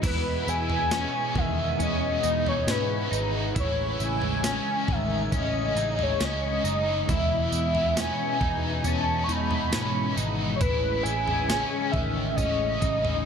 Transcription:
0.02 overdriven electric guitar E2 B2 E3 G#3 B3 E4, picked electric bass E2, string machine B2 G#3 B3 G#4, clean electric guitar E4, soft synth lead B4, synth texture G#5, kick, floor tom, crash, tambourine
0.46 picked electric bass E2, overdriven electric guitar G#3 B3 E4, soft synth lead G#5, tambourine
0.51 overdriven electric guitar E3
0.70 floor tom
0.91 overdriven electric guitar E3 G#3 B3, clean electric guitar C#4, snare, tambourine
0.96 overdriven electric guitar E4
1.35 picked electric bass E2, clean electric guitar D#3, overdriven electric guitar E3 G#3 B3, soft synth lead E5, kick, floor tom
1.79 overdriven electric guitar E2 B2 E3 G#3 B3 E4, picked electric bass E2, clean electric guitar C#4, soft synth lead D#5, floor tom, tambourine
2.22 picked electric bass E2, overdriven electric guitar G#3 B3 E4, clean electric guitar D#4, tambourine
2.28 overdriven electric guitar E3
2.46 soft synth lead C#5, floor tom
2.67 picked electric bass G#2, overdriven electric guitar E3 G#3 B3, clean electric guitar C#4, soft synth lead B4, snare, tambourine
2.71 overdriven electric guitar E4
3.11 picked electric bass G#1, overdriven electric guitar G#3 B3 E4, clean electric guitar D#4, synth texture F#5, tambourine
3.16 overdriven electric guitar E3
3.40 synth texture B5
3.55 picked electric bass A1, overdriven electric guitar A2 E3 G#3 C#4 E4, string machine C#3 G#3 C#4 G#4, clean electric guitar E4, kick, floor tom, tambourine
3.60 soft synth lead C#5
3.67 synth texture C#6
3.99 picked electric bass A1, overdriven electric guitar C#4 E4, tambourine
4.03 overdriven electric guitar G#3, soft synth lead G#5
4.22 floor tom
4.42 overdriven electric guitar E3 G#3 C#4, clean electric guitar C#4, synth texture G#5, snare, tambourine
4.47 overdriven electric guitar E4
4.88 picked electric bass A1, clean electric guitar D#3, overdriven electric guitar G#3 C#4, soft synth lead E5, kick, floor tom
5.32 picked electric bass A1, overdriven electric guitar A2 E3 G#3 C#4 E4, clean electric guitar C#4, kick, floor tom, tambourine
5.36 soft synth lead D#5
5.75 picked electric bass A1, overdriven electric guitar C#4 E4, clean electric guitar D#4, tambourine
5.80 overdriven electric guitar G#3
5.99 soft synth lead C#5, floor tom
6.20 picked electric bass C#2, overdriven electric guitar E3 G#3 C#4, clean electric guitar C#4, snare, tambourine
6.24 overdriven electric guitar E4, soft synth lead D#5
6.64 picked electric bass F#1, overdriven electric guitar C#4 E4, clean electric guitar D#4, tambourine
6.68 overdriven electric guitar G#3
7.08 overdriven electric guitar E2 B2 E3 G#3 B3 E4, picked electric bass E2, string machine B2 E3 G#3 B3, clean electric guitar E4, soft synth lead E5, kick, floor tom, tambourine
7.51 picked electric bass E2, overdriven electric guitar G#3 B3 E4, tambourine
7.56 overdriven electric guitar E3
7.75 floor tom
7.95 overdriven electric guitar E3 G#3 B3, clean electric guitar C#4, snare, tambourine
8.00 overdriven electric guitar E4, soft synth lead G#5
8.39 picked electric bass E2, overdriven electric guitar G#3 B3 E4, clean electric guitar D#4, kick, floor tom
8.44 overdriven electric guitar E3
8.82 overdriven electric guitar E2 B2 E3 G#3 B3 E4, picked electric bass E2, clean electric guitar C#4, floor tom, tambourine
8.87 soft synth lead A5
9.24 overdriven electric guitar E4, soft synth lead C#6
9.28 picked electric bass E2, overdriven electric guitar E3 G#3 B3, clean electric guitar D#4, tambourine
9.32 soft synth lead B5
9.51 floor tom
9.70 picked electric bass G#2, overdriven electric guitar E3 G#3 B3, clean electric guitar C#4, snare, tambourine
9.75 overdriven electric guitar E4
10.15 picked electric bass G#1, overdriven electric guitar G#3 B3 E4, clean electric guitar D#4, tambourine
10.20 overdriven electric guitar E3
10.56 overdriven electric guitar A2, soft synth lead C#5
10.60 picked electric bass A1, string machine C#3 C#4 G#4, overdriven electric guitar E3 G#3 C#4 E4, clean electric guitar E4, soft synth lead B4, kick, floor tom, tambourine
11.03 picked electric bass A1, overdriven electric guitar C#4 E4, soft synth lead G#5, tambourine
11.09 overdriven electric guitar G#3
11.28 floor tom
11.47 overdriven electric guitar E3 G#3 C#4, clean electric guitar C#4, snare, tambourine
11.53 overdriven electric guitar E4
11.92 picked electric bass A1, clean electric guitar D#3, overdriven electric guitar C#4, soft synth lead E5, kick, floor tom
11.97 overdriven electric guitar G#3
12.31 soft synth lead E5
12.36 picked electric bass A1, overdriven electric guitar A2 E3 G#3 C#4, clean electric guitar C#4, soft synth lead D#5, kick, floor tom, tambourine
12.41 overdriven electric guitar E4
12.81 picked electric bass A1, overdriven electric guitar C#4 E4, clean electric guitar D#4, kick, tambourine
12.86 overdriven electric guitar G#3
13.05 floor tom

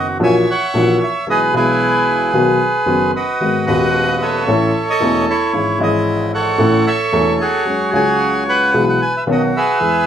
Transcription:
Already playing: upright piano F#1 F#2 D#3 F#3 B3 F#4, bandoneon F#4
0.20 upright piano A#1 A#2 E3 A#3 C#4 F#4, bandoneon C#5 E5 G#5
0.51 bandoneon C#5 F#5
0.74 upright piano A#1 A#2 E3 A#3 C#4 F#4
1.03 bandoneon E5
1.26 upright piano B1 B2 E3 G#3 B3 G#4, bandoneon B4 D#5
1.30 bandoneon G#4
1.53 upright piano B1 B2 E3 G#3 B3 G#4, bandoneon E4 G#4 B4
2.33 upright piano B1 B2 D#3 F#3 B3 F#4
2.86 upright piano F#1 F#2 D#3 F#3 B3 F#4
3.16 bandoneon F#4 B4 D#5
3.40 upright piano G#1 G#2 D#3 G#3 B3 F#4
3.66 upright piano D#1 D#2 D#3 G#3 B3, bandoneon B4 D#5 F#5
3.70 upright piano F#4
4.22 bandoneon A4 C#5 E5
4.48 upright piano A1 A2 E3 A3 C#4 A4
4.90 bandoneon A4 D#5
5.00 upright piano E1 E2 E3 A3 C#4 A4
5.30 bandoneon E4 C#5
5.53 upright piano G#1 G#2 E3 C#4 D#4 G#4
5.80 upright piano G#1 G#2 E3 C#4 G#4 D#5, bandoneon D#5
6.34 bandoneon A4 C#5 F#5
6.58 upright piano A1 A2 E3 A3 C#4 A4
6.87 bandoneon A4 C#5 E5
7.12 upright piano E1 E2 E3 A3 C#4 A4
7.41 bandoneon F#4 G#4 C#5
7.65 upright piano F#2 F#3 G#3 C#4 G#4
7.91 upright piano C#2 C#3 F#3 G#3 C#4, bandoneon G#5
7.95 upright piano G#4, bandoneon C#5
8.49 bandoneon B4 F#5
8.74 upright piano B1 B2 E3 G#3 B3 G#4
8.89 bandoneon F#5
9.02 bandoneon G#5
9.17 bandoneon E5
9.27 upright piano B1 B2 D#3 B3 C#4 F#4
9.31 bandoneon F#4 D#5
9.57 bandoneon G#4 B4 E5
9.80 upright piano E2 E3 G#3 B3 G#4

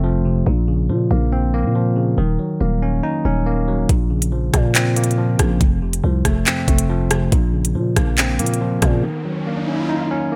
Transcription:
Already playing: 808-style bass F1, tine electric piano F2 C3 F3 A3 C4
0.04 tine electric piano F3
0.25 tine electric piano C3
0.46 808-style bass A#1, tine electric piano A#2
0.68 tine electric piano C#3
0.89 808-style bass A#2, tine electric piano F3
1.11 808-style bass A#1, tine electric piano A#3
1.33 tine electric piano C4
1.54 tine electric piano A#3
1.64 808-style bass A#2
1.75 tine electric piano F3
1.97 tine electric piano C#3
2.18 808-style bass D#1, tine electric piano D#3
2.39 tine electric piano F#3
2.61 808-style bass D#1, tine electric piano A#3
2.82 tine electric piano C#4
3.03 tine electric piano D#4
3.25 808-style bass D#1, tine electric piano C#4
3.46 tine electric piano A#3
3.68 tine electric piano F#3
3.89 808-style bass A#1, tine electric piano A#2, kick, closed hi-hat
4.11 tine electric piano C#3
4.22 closed hi-hat
4.32 tine electric piano F3
4.54 808-style bass A#2, tine electric piano A#3, kick, cross-stick, closed hi-hat
4.75 tine electric piano C4, clap, closed hi-hat
4.96 tine electric piano A#3, closed hi-hat
5.04 closed hi-hat
5.11 closed hi-hat
5.18 tine electric piano F3
5.39 808-style bass A#1, tine electric piano C#3, kick, cross-stick, closed hi-hat
5.61 808-style bass F1, tine electric piano F2, kick, closed hi-hat
5.82 tine electric piano C3
5.93 closed hi-hat
6.04 808-style bass C2, tine electric piano F3
6.25 808-style bass F1, tine electric piano A3, kick, cross-stick, closed hi-hat
6.46 tine electric piano C4, clap, closed hi-hat
6.68 808-style bass F1, tine electric piano A3, kick, closed hi-hat
6.78 closed hi-hat
6.89 tine electric piano F3
7.11 tine electric piano C3, cross-stick, closed hi-hat
7.32 808-style bass A#1, tine electric piano A#2, kick, closed hi-hat, riser
7.54 tine electric piano C#3
7.65 closed hi-hat
7.75 808-style bass A#2, tine electric piano F3
7.96 808-style bass A#1, tine electric piano A#3, kick, cross-stick, closed hi-hat
8.18 tine electric piano C4, clap, closed hi-hat
8.39 808-style bass A#2, tine electric piano A#3, closed hi-hat
8.46 closed hi-hat
8.54 closed hi-hat
8.61 tine electric piano F3
8.82 808-style bass A#2, tine electric piano C#3, kick, cross-stick, closed hi-hat
9.03 tine electric piano D#3
9.25 tine electric piano F#3
9.47 tine electric piano A#3
9.68 tine electric piano C#4
9.89 tine electric piano D#4
10.11 tine electric piano C#4
10.32 tine electric piano A#3

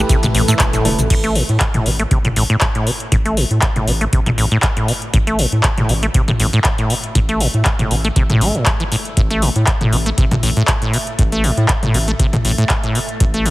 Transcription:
Already playing: analog synth pad A2 E3 E4 B4, synth stab A3 E4 G4, ambient pad A3 A4 E5 A5
0.09 analog synth bass A1, acid bass C3, kick, closed hi-hat, shaker
0.23 acid bass A2, closed hi-hat, mid tom, shaker
0.35 analog synth bass A1, acid bass A2, open hi-hat
0.48 acid bass A2, synth stab A3 E4 A4, closed hi-hat, shaker
0.59 analog synth bass E1, kick, clap, closed hi-hat, shaker
0.73 acid bass A2, closed hi-hat, shaker
0.85 analog synth bass E1, acid bass C3, synth stab A3 E4 A4, open hi-hat, high tom
0.99 analog synth bass A1, closed hi-hat, mid tom, shaker
1.10 analog synth bass A1, acid bass A2, ambient pad A3, kick, closed hi-hat, crash
1.24 acid bass A3, closed hi-hat
1.35 acid bass A2, ambient pad A4, open hi-hat
1.49 analog synth bass A2, closed hi-hat
1.60 kick, clap, closed hi-hat
1.74 acid bass A2, closed hi-hat, mid tom
1.86 analog synth bass A1, acid bass C3, open hi-hat
1.99 acid bass A3, closed hi-hat
2.08 analog synth bass A1, acid bass C3, ambient pad E5, kick, closed hi-hat
2.25 acid bass A2, closed hi-hat, mid tom
2.34 analog synth bass A1, acid bass A2, ambient pad E6, open hi-hat
2.50 acid bass A2, closed hi-hat
2.61 kick, clap, closed hi-hat
2.75 acid bass A2, closed hi-hat
2.87 acid bass C3, open hi-hat
3.00 closed hi-hat
3.12 analog synth bass A1, acid bass A2, kick, closed hi-hat
3.25 acid bass A3, closed hi-hat
3.37 acid bass A2, open hi-hat
3.51 analog synth bass A2, closed hi-hat
3.62 kick, clap, closed hi-hat
3.76 acid bass A2, closed hi-hat, mid tom
3.87 analog synth bass A1, acid bass C3, open hi-hat
4.01 acid bass A3, closed hi-hat
4.13 analog synth bass A1, acid bass C3, kick, closed hi-hat
4.26 acid bass A2, closed hi-hat, mid tom
4.38 analog synth bass A1, acid bass A2, open hi-hat
4.51 acid bass A2, closed hi-hat
4.63 kick, clap, closed hi-hat
4.77 acid bass A2, closed hi-hat
4.88 acid bass C3, open hi-hat
5.02 closed hi-hat
5.14 analog synth bass A1, acid bass A2, kick, closed hi-hat
5.27 acid bass A3, closed hi-hat
5.39 acid bass A2, open hi-hat
5.52 analog synth bass A2, closed hi-hat
5.63 kick, clap, closed hi-hat
5.78 acid bass A2, closed hi-hat, mid tom
5.89 analog synth bass A1, acid bass C3, open hi-hat
6.03 acid bass A3, closed hi-hat
6.14 analog synth bass A1, acid bass C3, kick, closed hi-hat
6.28 acid bass A2, closed hi-hat, mid tom
6.40 analog synth bass A1, acid bass A2, open hi-hat
6.53 acid bass A2, closed hi-hat
6.64 kick, clap, closed hi-hat
6.78 acid bass A2, closed hi-hat
6.90 acid bass C3, open hi-hat
7.04 closed hi-hat
7.15 analog synth bass A1, acid bass A2, kick, closed hi-hat
7.29 acid bass A3, closed hi-hat
7.40 acid bass A2, open hi-hat
7.54 analog synth bass A2
7.65 kick, clap, closed hi-hat
7.79 acid bass A2, closed hi-hat, mid tom
7.91 analog synth bass A1, acid bass C3, open hi-hat
8.04 acid bass A3, closed hi-hat
8.16 analog synth bass A1, acid bass C3, kick, closed hi-hat
8.30 acid bass A2, closed hi-hat, mid tom
8.41 analog synth bass A1, acid bass A3, open hi-hat
8.55 acid bass A2, closed hi-hat
8.66 kick, clap, closed hi-hat
8.80 acid bass E3, closed hi-hat
8.92 acid bass A2, open hi-hat
9.05 closed hi-hat
9.17 analog synth bass A1, acid bass A2, kick, closed hi-hat
9.30 acid bass A3, closed hi-hat
9.42 acid bass A2, open hi-hat
9.56 analog synth bass A2, closed hi-hat
9.67 kick, clap, closed hi-hat
9.81 acid bass A2, closed hi-hat, mid tom
9.93 analog synth bass A1, acid bass C3, open hi-hat
10.06 acid bass A3, closed hi-hat
10.18 analog synth bass A1, acid bass C3, kick, closed hi-hat
10.31 acid bass A2, closed hi-hat, mid tom
10.41 analog synth bass A1, acid bass A2, ambient pad A6, open hi-hat
10.57 acid bass A2, closed hi-hat
10.68 kick, clap, closed hi-hat
10.82 acid bass A2, closed hi-hat
10.93 acid bass C3, open hi-hat
11.07 closed hi-hat
11.19 analog synth bass A1, acid bass A2, kick, closed hi-hat
11.32 acid bass A3, closed hi-hat
11.44 acid bass A2, open hi-hat
11.57 analog synth bass A2, closed hi-hat
11.69 kick, clap, closed hi-hat
11.83 acid bass A2, closed hi-hat, mid tom
11.94 analog synth bass A1, acid bass C3, open hi-hat
12.08 acid bass A3, closed hi-hat
12.19 analog synth bass A1, acid bass C3, kick, closed hi-hat
12.33 acid bass A2, closed hi-hat, mid tom
12.45 analog synth bass A1, acid bass A2, open hi-hat
12.58 acid bass A2, closed hi-hat
12.69 kick, clap, closed hi-hat
12.83 acid bass A2, closed hi-hat
12.95 acid bass C3, open hi-hat
13.09 closed hi-hat
13.20 analog synth bass A1, acid bass A2, kick, closed hi-hat
13.34 acid bass A3, closed hi-hat
13.46 acid bass A2, open hi-hat

